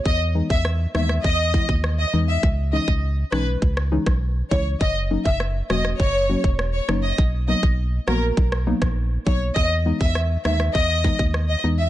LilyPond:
<<
  \new Staff \with { instrumentName = "Violin section" } { \time 4/4 \key e \lydian \tempo 4 = 101 dis''16 r8 e''16 r8 e''16 r16 dis''8. r8 dis''16 r16 e''16 | r8 dis''16 r8. b'16 r4. r16 cis''16 r16 | dis''16 r8 e''16 r8 dis''16 r16 cis''8. r8 cis''16 r16 dis''16 | r8 dis''16 r8. ais'16 r4. r16 cis''16 r16 |
dis''16 r8 e''16 r8 e''16 r16 dis''8. r8 dis''16 r16 e''16 | }
  \new Staff \with { instrumentName = "Synth pluck" } { \time 4/4 \key e \lydian r8 <e gis b dis'>8 r8 <e gis b dis'>8 r8 <e gis b e'>8 r8 <e gis b dis'>8 | r8 <e gis cis' dis'>8 r8 <e gis cis' dis'>8 r8 <e gis cis' dis'>8 r8 <e gis cis' e'>8 | r8 <fis ais cis' dis'>8 r8 <fis ais cis' fis'>8 r8 <fis ais cis' fis'>8 r8 <fis ais cis' dis'>8 | r8 <fis ais b dis'>8 r8 <fis ais b fis'>8 r8 <fis ais b dis'>8 r8 <fis ais b dis'>8 |
r8 <e gis b dis'>8 r8 <e gis b dis'>8 r8 <e gis b dis'>8 r8 <e gis b dis'>8 | }
  \new Staff \with { instrumentName = "FM bass" } { \clef bass \time 4/4 \key e \lydian e,8. e,8. dis,8 e,8. dis,8. e,8 | cis,8. cis,8. b,,8 cis,8. b,,8. cis,8 | fis,,8. fis,,8. e,,8 fis,,8. e,,8. fis,,8 | b,,8. b,,8. ais,,8 b,,8. ais,,8. b,,8 |
e,8. e,8. dis,8 e,8. dis,8. e,8 | }
  \new DrumStaff \with { instrumentName = "Drums" } \drummode { \time 4/4 bd8. bd16 ss8 ss16 ss16 bd8 bd16 bd16 ss4 | bd8. bd16 r8 ss8 bd16 ss8 <bd ss>16 r8 bd8 | bd8. bd16 ss8 ss16 ss16 bd8. bd16 ss8 ss8 | bd8. bd16 r8 ss8 bd16 ss8 <bd ss>16 r8 bd8 |
bd8. bd16 ss8 ss16 ss16 bd8 bd16 bd16 ss4 | }
>>